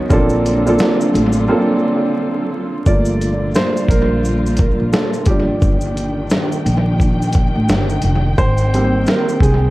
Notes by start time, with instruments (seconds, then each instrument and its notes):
Already playing: string section F#3, felt piano B3 C#4 D#4 F#4 A#4
0.09 upright bass A#1, string section D3 F4 A4, felt piano A#3 C4 D4 F4 A4, kick, shaker
0.30 shaker
0.46 closed hi-hat, shaker
0.65 felt piano A#3 C4 D4 F4 A4, shaker
0.79 snare, shaker
1.01 shaker
1.14 upright bass A1, closed hi-hat, shaker
1.32 shaker
1.48 felt piano A#3 C4 C#4 F4 A4
1.56 felt piano D4
2.86 upright bass G1, string section A#2 D3 G3 F4, felt piano F3 A3 A#3 D5, kick, shaker
3.05 shaker
3.21 closed hi-hat, shaker
3.55 felt piano C5, snare, shaker
3.77 shaker
3.89 upright bass A#1, felt piano A#4, kick, closed hi-hat, shaker
4.25 shaker
4.46 shaker
4.57 felt piano A#4, kick, closed hi-hat, shaker
4.80 upright bass A#1
4.92 felt piano A4, snare, shaker
5.13 shaker
5.26 upright bass G1, string section D#3 D4 G5, felt piano F3 G3 D4 G4, kick, closed hi-hat, shaker
5.62 upright bass G1, kick, shaker
5.81 shaker
5.97 closed hi-hat, shaker
6.30 snare, shaker
6.52 shaker
6.66 upright bass A#1, closed hi-hat, shaker
7.00 kick, shaker
7.22 shaker
7.33 kick, closed hi-hat, shaker
7.55 upright bass A1
7.69 upright bass G1, snare, shaker
7.89 shaker
8.02 upright bass F1, closed hi-hat, shaker
8.38 upright bass G#1, string section C4, felt piano C5, kick, shaker
8.58 shaker
8.73 felt piano G3 A#3 C4, closed hi-hat, shaker
9.06 felt piano A#4, snare, shaker
9.29 shaker
9.40 upright bass C2, felt piano G#4, kick, closed hi-hat, shaker